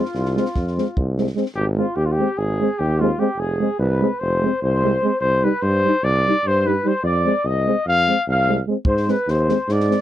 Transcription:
Already playing: trumpet F4, flugelhorn F4
0.05 snare
0.14 tuba C2, snare
0.25 snare
0.36 trombone G#3, euphonium C4, snare
0.46 snare
0.55 tuba F2, kick, snare
0.67 snare
0.78 trombone G#3, euphonium C4, snare
0.97 tuba C2, kick
1.18 trombone G#3, euphonium C4, snare
1.27 snare
1.35 trombone G#3, euphonium C4, snare
1.46 snare
1.55 tuba G#1, trumpet G4, flugelhorn G4
1.77 trombone G#3, euphonium C4, trumpet F4, flugelhorn F4
1.96 tuba D#2, trumpet G4, flugelhorn G4
2.05 trumpet F4, flugelhorn F4
2.12 trumpet G4, flugelhorn G4
2.19 trombone G#3, euphonium C4
2.37 tuba G#1, trumpet G#4, flugelhorn G#4
2.60 trombone G#3, euphonium C4
2.79 tuba D#2, trumpet G4, flugelhorn G4
2.99 trombone G#3, euphonium C4, flugelhorn F4, trumpet F4
3.19 trombone G#3, euphonium C4, flugelhorn G4, trumpet G4
3.37 tuba F1, flugelhorn G#4, trumpet G#4
3.60 trombone G#3, euphonium C4
3.79 tuba C2, trumpet B4, flugelhorn B4
4.01 trombone G#3, euphonium C4
4.20 tuba F1, trumpet C5, flugelhorn C5
4.42 trombone G#3, euphonium C4
4.62 tuba C2, trumpet C5, flugelhorn C5
4.83 trombone G#3, euphonium C4
5.03 trombone G#3, euphonium C4
5.21 tuba C2, trumpet C5, flugelhorn C5
5.43 trombone G3, euphonium D#4, trumpet B4, flugelhorn B4
5.61 tuba G2, trumpet C5, flugelhorn C5
5.84 trombone G3, euphonium D#4
6.03 tuba C2, trumpet D5, flugelhorn D5
6.26 trombone G3, euphonium D#4
6.45 tuba G2, trumpet C5, flugelhorn C5
6.66 trombone G3, euphonium D#4, trumpet B4, flugelhorn B4
6.84 trombone G3, euphonium D#4, flugelhorn C5, trumpet C5
7.03 tuba F2, flugelhorn D5, trumpet D5
7.25 trombone G#3, euphonium C4
7.45 tuba C2, flugelhorn D#5, trumpet D#5
7.67 trombone G#3, euphonium C4
7.85 tuba F2, flugelhorn F5, trumpet F5
8.08 trombone G#3, euphonium C4
8.28 tuba C2, flugelhorn F5, trumpet F5
8.48 trombone G#3, euphonium C4
8.67 trombone G#3, euphonium C4
8.85 tuba G#2, flugelhorn C5, trumpet C5, kick
8.97 snare
9.07 trombone G#3, euphonium C4, flugelhorn B4, trumpet B4, snare
9.28 tuba D#2, trumpet C5, flugelhorn C5, snare
9.49 trombone G#3, euphonium C4, snare
9.69 tuba G#2, flugelhorn D5, trumpet D5, snare
9.80 snare
9.89 trombone G#3, euphonium C4, snare

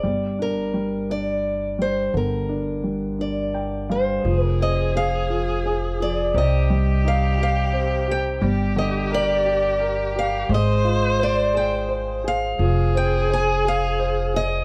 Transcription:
Already playing: steel-string acoustic guitar D5
0.03 upright bass G1, upright piano G3
0.39 upright piano D4, steel-string acoustic guitar A#4
0.74 upright piano G3
1.10 upright piano D4, steel-string acoustic guitar D5
1.79 upright piano G3, steel-string acoustic guitar C5
2.14 upright bass G1, upright piano D3, steel-string acoustic guitar A#4
2.49 upright piano D4
2.84 upright piano G3
3.19 upright piano D4, steel-string acoustic guitar D5
3.54 upright piano G5
3.90 upright piano G3 F5, steel-string acoustic guitar C5
4.23 upright bass F1, upright piano F3, viola G#4
4.45 steel-string acoustic guitar A#4
4.60 upright piano C4, steel-string acoustic guitar D#5
4.96 upright piano G#4, steel-string acoustic guitar F5
5.30 upright piano F3
5.66 upright piano G#4
6.00 upright piano F3, steel-string acoustic guitar D5
6.34 upright bass C2, upright piano C3, viola G4, steel-string acoustic guitar D#5
6.70 upright piano G3
7.04 upright piano D#4, steel-string acoustic guitar F5
7.38 upright piano G4
7.43 steel-string acoustic guitar F5
7.73 upright piano C4
8.08 upright piano G4, steel-string acoustic guitar G5
8.41 upright bass G1, upright piano G3, viola G4
8.76 upright piano D3, steel-string acoustic guitar D#5
9.11 upright piano A#4, steel-string acoustic guitar D5
9.46 upright piano G4
9.80 upright piano A#4
10.16 upright piano G4, steel-string acoustic guitar F5
10.49 upright bass G#1, upright piano G#3, viola C5
10.54 steel-string acoustic guitar D#5
10.85 upright piano F4
11.19 upright piano C5, steel-string acoustic guitar D5
11.54 upright piano G#4, steel-string acoustic guitar G5
11.89 upright piano C5
12.24 upright piano G#4, steel-string acoustic guitar F5
12.59 upright bass F1, upright piano F3, viola G#4
12.94 upright piano C4, steel-string acoustic guitar G5
13.29 upright piano C5, steel-string acoustic guitar G#5
13.65 upright piano G#4, steel-string acoustic guitar F5
13.99 upright piano C5
14.34 upright piano G#4, steel-string acoustic guitar D#5

